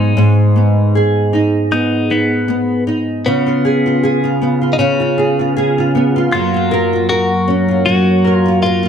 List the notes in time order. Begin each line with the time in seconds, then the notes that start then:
Already playing: G#2 F#3 B3 D#4
0.17 G#2
0.56 B3
0.95 G#4
1.33 D#4
1.71 B3 D#4
2.10 B3 D#4
2.48 B3
2.87 D#4
3.25 C#3 B3 F4
3.47 F4
3.65 G#4
3.86 F4
4.03 G#4
4.24 F4
4.42 B3
4.61 F4
4.73 D#4
4.79 C#3 C#4
5.00 F4
5.18 G#4
5.39 F4
5.57 G#4
5.78 F4
5.95 B3
6.16 F4
6.32 F#2 F#3 A#3 F4
6.54 F4
6.71 A#4
6.93 F4
7.09 F#4 A#4
7.48 C#4
7.68 F4
7.86 F#3 F#4
8.24 A#4
8.36 F4
8.46 F4
8.63 F4 A#4
8.83 F4